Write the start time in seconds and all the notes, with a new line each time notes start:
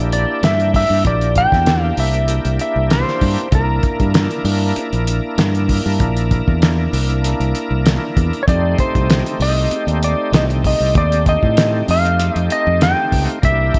Already playing: A#1 A#3 D4 E4 G4
0.12 D5, closed hi-hat
0.43 G2 E5, snare, closed hi-hat
0.60 closed hi-hat
0.74 E5, kick, open hi-hat
0.90 G2
1.05 A#1 D5, kick, closed hi-hat
1.21 closed hi-hat
1.35 G5, kick, closed hi-hat
1.52 E2, kick, snare
1.66 snare, closed hi-hat
1.82 F5
1.97 C2 E5, open hi-hat
2.14 closed hi-hat
2.28 closed hi-hat
2.45 C2, closed hi-hat
2.59 E5, closed hi-hat
2.76 C2
2.90 C5, snare, closed hi-hat
3.08 snare
3.21 G2, kick, open hi-hat
3.38 closed hi-hat
3.51 C2 A#3 D4 E4 A#4, kick, closed hi-hat
3.83 kick, closed hi-hat
4.00 G2, kick, closed hi-hat
4.14 snare, closed hi-hat
4.31 closed hi-hat
4.45 G2, open hi-hat
4.76 muted fingered electric bass stroke, closed hi-hat
4.93 A#1, closed hi-hat
5.07 closed hi-hat
5.38 G2, snare, closed hi-hat
5.55 closed hi-hat
5.69 kick, open hi-hat
5.86 G2
6.00 A#1, kick, closed hi-hat
6.17 closed hi-hat
6.31 kick, closed hi-hat
6.48 E2, kick
6.62 snare, closed hi-hat
6.93 C2, open hi-hat
7.10 closed hi-hat
7.24 closed hi-hat
7.40 C2, closed hi-hat
7.55 closed hi-hat
7.71 C2
7.86 snare, closed hi-hat
8.17 E2, kick, closed hi-hat
8.33 closed hi-hat
8.43 C#5
8.47 F2 A3 C4 D#4 G4 D5, kick, closed hi-hat
8.78 C5, kick, closed hi-hat
8.95 C2, kick, closed hi-hat
9.10 snare, closed hi-hat
9.26 closed hi-hat
9.40 C2 D#5, open hi-hat
9.71 muted fingered electric bass stroke, closed hi-hat
9.87 D#2 D5, closed hi-hat
10.03 D5, closed hi-hat
10.32 C2 D#5, snare, closed hi-hat
10.50 closed hi-hat
10.64 D#5, kick, open hi-hat
10.80 C2
10.95 D#2 D5, kick, closed hi-hat
11.12 closed hi-hat
11.26 D#5, kick, closed hi-hat
11.43 A2, kick
11.57 snare, closed hi-hat
11.88 F2 F5, open hi-hat
12.05 closed hi-hat
12.20 closed hi-hat
12.36 F2 D#5, closed hi-hat
12.50 D#5, closed hi-hat
12.67 F2
12.81 G5, snare, closed hi-hat
13.12 C#2, kick, open hi-hat
13.29 F5, closed hi-hat
13.42 C2 A#3 D4 E4 G4 E5, kick, closed hi-hat
13.74 kick, closed hi-hat